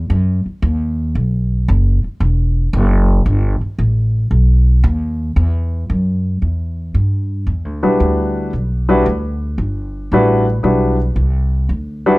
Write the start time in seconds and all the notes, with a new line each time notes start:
0.10 F#2
0.46 muted upright bass stroke
0.62 D#2
1.15 B1
1.68 F#1
2.04 muted upright bass stroke
2.20 E1
2.73 F#1
3.26 G1
3.61 muted upright bass stroke
3.79 A1
4.31 B1
4.84 D#2
5.36 E2
5.90 F#2
6.42 E2
6.94 G2
7.47 E2
7.65 D2
7.83 B1 G3 D4 E4 F#4 B4
8.00 D2
8.53 B1
8.89 G3 D4 E4 F#4 B4
9.06 D2
9.58 G1
10.12 A1 G3 D4 E4 F#4 B4
10.63 B1 G3 D4 E4 F#4 B4
11.16 C2
11.69 D2
12.06 G3 D4 E4 F#4 B4